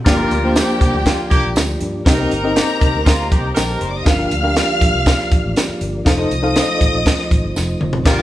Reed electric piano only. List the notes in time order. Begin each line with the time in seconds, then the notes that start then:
0.06 A#3 D4 F4 G4 D5
0.18 A#3 D4 F4 G4 A#4
0.43 A#3 D4 F4 G4 C5
2.06 C4 D#4 G4 A#4 D#5
2.18 C4 D#4 G4 A#4 D#5
2.43 C4 D#4 G4 A#4 D#5
4.05 D4 F4 G4 A#4 F5
4.18 D4 F4 G4 A#4 F5
4.43 D4 F4 G4 A#4 F5
6.05 D#4 F4 A4 C5 F5
6.17 D#4 F4 A4 C5 D#5
6.42 D#4 F4 A4 C5 F5
8.05 D4 F4 G4 A#4 F5
8.18 D4 F4 G4